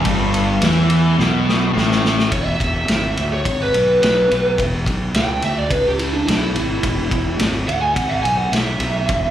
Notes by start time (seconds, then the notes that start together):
0.05 G1 G2, kick, ride
0.34 ride
0.61 E2 E3, snare, ride
0.90 ride
1.19 B1 B2, snare
1.49 snare
1.74 A1 A2, snare
1.91 snare
2.05 snare
2.19 snare
2.31 E1 C#5, kick, ride
2.45 E5
2.60 E1, kick, ride
2.88 G#1, snare, ride
3.17 D2, ride
3.33 C#5
3.45 G#1, kick, ride
3.62 B4
3.74 B1, ride
4.03 B1 B4, snare, ride
4.31 B1, ride
4.58 E1, kick, ride
4.86 B1, kick, ride
5.14 C#2 G5, snare, ride
5.42 D2 E5, ride
5.58 D5
5.70 C#2 B4, kick, ride
5.88 G4
5.99 E4, ride
6.13 D4
6.26 B1 E4, snare, ride
6.54 G#1, ride
6.83 E1, kick, ride
7.11 E1, kick, ride
7.39 G#1, snare, ride
7.68 D2 F#5, ride
7.82 G#5
7.94 G#1 F#5, kick, ride
8.10 F#5
8.23 B1 G#5, ride
8.37 F#5
8.52 B1 E5, snare, ride
8.80 B1, ride
9.09 E1, kick, ride